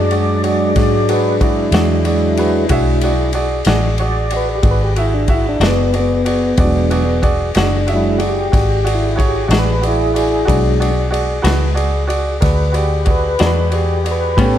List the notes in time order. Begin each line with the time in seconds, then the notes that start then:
Already playing: F#2 F#3 G#3 D4 D5
0.11 F#4 G#4 D5, ride
0.44 F#4 G#4 C#5 D5, ride
0.49 D5
0.76 G#2 F#4 G#4 D5, kick, snare, ride
1.08 F#4 G#4 A#4 B4 D5, ride
1.41 E4 F#4 G#4 D5, kick, ride
1.71 E2 G#3 D4 F#4 G#4 D5, snare, ride
1.76 E3
2.05 F#4 G#4 D5, ride
2.37 F#4 G#4 B4, ride
2.69 B1 F#3 G#3 D4 F#4 G#4 E5, kick, ride
3.01 F#4 G#4 D5, ride
3.33 F#4 G#4 D5, ride
3.65 A1 E3 G#3 D4 F#4 G#4 D5, snare, ride
3.98 F#4 G#4 C#5 D5, ride
4.05 D5
4.30 F#4 G#4 D5, ride
4.36 B4
4.55 G4
4.62 G#1 F#4 G#4 D5, kick, ride
4.71 B4
4.84 G4
4.96 F#4 G#4 E5, ride
5.01 E4
5.14 D4
5.28 F#4 G#4 E5, kick, ride
5.34 E4
5.49 D4
5.60 F#1 E3 G#3 D4 F#4 G#4 D5, snare, ride
5.67 B3
5.93 F#4 G#4 D5, ride
5.99 B3
6.25 F#4 G#4 D5, ride
6.57 E1 F#4 G#4 D5, kick, ride
6.64 F#3 G#3 D4
6.91 F#4 G#4 D5, ride
7.22 F#4 G#4 D5, kick, ride
7.55 F#1 C#4 D4 F#4 G#4 D5, snare, ride
7.59 E3 G#3 D4
7.87 F#4 G#4 E5, ride
7.93 F#3 G#3 D4 E4
8.18 F#4 G#4 D5, ride
8.29 G4
8.52 G#1 F#4 G#4 D5, kick, snare, ride
8.84 F#4 G#4 D5, ride
8.94 E4
9.16 F#4 G#4 C#5, kick, ride
9.28 G4
9.48 A1 D4 F#4 G#4 D5, ride
9.52 E3 G#3, snare
9.58 B4
9.82 F#4 G#4 D5, ride
9.87 E4 G#4
10.14 F#4 G#4 D5, ride
10.45 B1 F#3 G#3 D4 F#4 G#4 D5, kick, ride
10.80 F#4 G#4 D5, ride
11.11 F#4 G#4 D5, ride
11.42 C#2 E3 G#3 D4 F#4 G#4 B4, ride
11.47 snare
11.74 F#4 G#4 D5, ride
12.07 F#4 G#4 D5, ride
12.40 D2 F#4 G#4 A#4 B4 D5, kick, snare, ride
12.72 F#4 G#4 D5, ride
12.78 G4
13.05 F#4 G#4 D5, kick, ride
13.11 B4
13.39 E2 E3 G#3 D4 F#4 G#4 A#4 D5, snare, ride
13.46 B4
13.71 F#4 G#4 D5, ride
13.75 G4
14.04 F#4 G#4 D5, ride
14.11 B4
14.37 A2 G3 B3 C#4 G4 B4 C#5, kick, ride
14.41 B3 C#4 G4 A4